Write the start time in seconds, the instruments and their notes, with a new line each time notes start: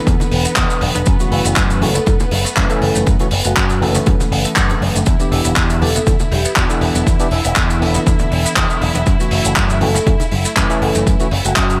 Already playing: tine electric piano E3 B3 D4 A4, string section B3 B4
0.07 picked electric bass E2, synth arpeggio sound D3, kick, closed hi-hat, low conga, shaker
0.20 synth arpeggio sound D3, muted picked electric bass stroke, closed hi-hat, low conga, shaker
0.32 picked electric bass E1, synth arpeggio sound D3, open hi-hat
0.45 synth arpeggio sound B3, muted picked electric bass stroke, closed hi-hat, shaker
0.56 picked electric bass E2, synth arpeggio sound D3, kick, clap, closed hi-hat, shaker
0.70 synth arpeggio sound D3, closed hi-hat, shaker
0.81 picked electric bass E1, synth arpeggio sound D3, open hi-hat, high conga
0.95 picked electric bass E1, synth arpeggio sound B3, closed hi-hat, high conga, shaker
1.06 picked electric bass F#2, synth arpeggio sound C#3, kick, closed hi-hat, shaker
1.19 synth arpeggio sound C#3, tine electric piano E3 A3 C#4 F#4, closed hi-hat, shaker
1.32 picked electric bass F#1, synth arpeggio sound C#3, vibraphone E4, open hi-hat
1.45 picked electric bass F#1, synth arpeggio sound A3, closed hi-hat, shaker
1.56 picked electric bass F#2, synth arpeggio sound C#3, kick, clap, closed hi-hat, shaker
1.70 synth arpeggio sound C#3, closed hi-hat, shaker
1.81 picked electric bass F#1, synth arpeggio sound C#3, tine electric piano E3 A3 C#4 F#4, vibraphone A4, open hi-hat, high conga
1.95 synth arpeggio sound A3, vibraphone A4, closed hi-hat, low conga, shaker
2.06 picked electric bass F#2, synth arpeggio sound C#3, kick, closed hi-hat, low conga, shaker
2.20 synth arpeggio sound C#3, closed hi-hat, low conga, shaker
2.31 picked electric bass F#1, synth arpeggio sound C#3, open hi-hat, high conga
2.45 synth arpeggio sound A3, muted picked electric bass stroke, closed hi-hat, shaker
2.56 picked electric bass F#2, synth arpeggio sound C#3, tine electric piano E3 A3 C#4 E4, kick, clap, closed hi-hat, shaker
2.70 synth arpeggio sound C#3, tine electric piano E3 A3 C#4 A4, closed hi-hat, shaker
2.82 picked electric bass F#1, synth arpeggio sound C#3, vibraphone A4, open hi-hat
2.95 picked electric bass F#1, synth arpeggio sound A3, closed hi-hat, high conga, shaker
3.06 picked electric bass F#2, synth arpeggio sound C#3, kick, closed hi-hat, shaker
3.19 synth arpeggio sound C#3, tine electric piano E3 A3 C#4 F#4, closed hi-hat, shaker
3.31 picked electric bass F#1, synth arpeggio sound C#3, open hi-hat
3.44 picked electric bass F#1, synth arpeggio sound A3, vibraphone F#4, closed hi-hat, shaker
3.56 picked electric bass F#2, synth arpeggio sound C#3, kick, clap, closed hi-hat, shaker
3.69 synth arpeggio sound C#3, closed hi-hat, shaker
3.81 picked electric bass F#1, synth arpeggio sound C#3, tine electric piano E3 A3 C#4 A4, open hi-hat, high conga
3.95 synth arpeggio sound A3, closed hi-hat, low conga, shaker
4.06 picked electric bass F#2, synth arpeggio sound C#3, kick, closed hi-hat, low conga, shaker
4.20 synth arpeggio sound C#3, muted picked electric bass stroke, closed hi-hat, low conga, shaker
4.32 picked electric bass F#1, synth arpeggio sound C#3, open hi-hat
4.45 synth arpeggio sound A3, muted picked electric bass stroke, closed hi-hat, shaker
4.56 picked electric bass F#2, synth arpeggio sound C#3, kick, clap, closed hi-hat, shaker
4.70 synth arpeggio sound C#3, closed hi-hat, high conga, shaker
4.81 picked electric bass F#1, synth arpeggio sound C#3, open hi-hat, high conga
4.95 picked electric bass F#1, synth arpeggio sound A3, closed hi-hat, high conga, shaker
5.06 picked electric bass E2, synth arpeggio sound D3, string section E4 E5, kick, closed hi-hat, shaker
5.19 synth arpeggio sound D3, tine electric piano E3 B3 D4 G4, closed hi-hat, shaker
5.32 picked electric bass E1, synth arpeggio sound D3, vibraphone E4, open hi-hat
5.45 picked electric bass E1, synth arpeggio sound B3, closed hi-hat, shaker
5.56 picked electric bass E2, synth arpeggio sound D3, kick, clap, closed hi-hat, shaker
5.70 synth arpeggio sound D3, closed hi-hat, shaker
5.81 picked electric bass E1, synth arpeggio sound D3, tine electric piano E3 B3 D4 G4, vibraphone A4, open hi-hat, high conga
5.94 synth arpeggio sound B3, vibraphone A4, closed hi-hat, low conga, shaker
6.06 picked electric bass E2, synth arpeggio sound D3, kick, closed hi-hat, low conga, shaker
6.19 synth arpeggio sound D3, closed hi-hat, low conga, shaker
6.31 picked electric bass E1, synth arpeggio sound D3, vibraphone G4, open hi-hat, high conga
6.45 synth arpeggio sound B3, muted picked electric bass stroke, closed hi-hat, shaker
6.56 picked electric bass E2, synth arpeggio sound D3, tine electric piano E3 B3 D4 F#4, kick, clap, closed hi-hat, shaker
6.69 synth arpeggio sound D3, tine electric piano E3 B3 D4 A4, closed hi-hat, shaker
6.81 picked electric bass E1, synth arpeggio sound D3, open hi-hat
6.95 picked electric bass E1, synth arpeggio sound B3, closed hi-hat, high conga, shaker
7.06 picked electric bass E2, synth arpeggio sound D3, kick, closed hi-hat, shaker
7.19 synth arpeggio sound D3, tine electric piano E3 B3 D4 G4, closed hi-hat, shaker
7.31 picked electric bass E1, synth arpeggio sound D3, vibraphone E4, open hi-hat
7.45 picked electric bass E1, synth arpeggio sound B3, closed hi-hat, shaker
7.56 picked electric bass E2, synth arpeggio sound D3, kick, clap, closed hi-hat, shaker
7.70 synth arpeggio sound D3, closed hi-hat, shaker
7.80 picked electric bass E1, synth arpeggio sound D3, tine electric piano E3 B3 D4 A4, open hi-hat
7.95 synth arpeggio sound B3, closed hi-hat, low conga, shaker
8.06 picked electric bass E2, synth arpeggio sound D3, kick, closed hi-hat, low conga, shaker
8.19 synth arpeggio sound D3, muted picked electric bass stroke, closed hi-hat, low conga, shaker
8.31 picked electric bass E1, synth arpeggio sound D3, open hi-hat
8.45 synth arpeggio sound B3, muted picked electric bass stroke, closed hi-hat, shaker
8.56 picked electric bass E2, synth arpeggio sound D3, kick, clap, closed hi-hat, shaker
8.70 synth arpeggio sound D3, closed hi-hat, shaker
8.81 picked electric bass E1, synth arpeggio sound D3, open hi-hat, high conga
8.95 picked electric bass E1, synth arpeggio sound B3, closed hi-hat, high conga, shaker
9.06 picked electric bass F#2, synth arpeggio sound C#3, kick, closed hi-hat, shaker
9.19 synth arpeggio sound C#3, tine electric piano E3 A3 C#4 F#4, closed hi-hat, shaker
9.31 picked electric bass F#1, synth arpeggio sound C#3, vibraphone E4, open hi-hat
9.45 picked electric bass F#1, synth arpeggio sound A3, closed hi-hat, shaker
9.56 picked electric bass F#2, synth arpeggio sound C#3, kick, clap, closed hi-hat, shaker
9.70 synth arpeggio sound C#3, closed hi-hat, shaker
9.81 picked electric bass F#1, synth arpeggio sound C#3, tine electric piano E3 A3 C#4 F#4, vibraphone A4, open hi-hat, high conga
9.95 synth arpeggio sound A3, vibraphone A4, closed hi-hat, low conga, shaker
10.06 picked electric bass F#2, synth arpeggio sound C#3, kick, closed hi-hat, low conga, shaker
10.20 synth arpeggio sound C#3, closed hi-hat, low conga, shaker
10.32 picked electric bass F#1, synth arpeggio sound C#3, open hi-hat, high conga
10.45 synth arpeggio sound A3, muted picked electric bass stroke, closed hi-hat, shaker
10.56 picked electric bass F#2, synth arpeggio sound C#3, tine electric piano E3 A3 C#4 E4, kick, clap, closed hi-hat, shaker
10.69 synth arpeggio sound C#3, tine electric piano E3 A3 C#4 A4, closed hi-hat, shaker
10.82 picked electric bass F#1, synth arpeggio sound C#3, vibraphone A4, open hi-hat
10.95 picked electric bass F#1, synth arpeggio sound A3, closed hi-hat, high conga, shaker
11.07 picked electric bass F#2, synth arpeggio sound C#3, kick, closed hi-hat, shaker
11.20 synth arpeggio sound C#3, tine electric piano E3 A3 C#4 F#4, closed hi-hat, shaker
11.31 picked electric bass F#1, synth arpeggio sound C#3, open hi-hat
11.45 picked electric bass F#1, synth arpeggio sound A3, vibraphone F#4, closed hi-hat, shaker
11.56 picked electric bass F#2, synth arpeggio sound C#3, kick, clap, closed hi-hat, shaker
11.70 synth arpeggio sound C#3, closed hi-hat, shaker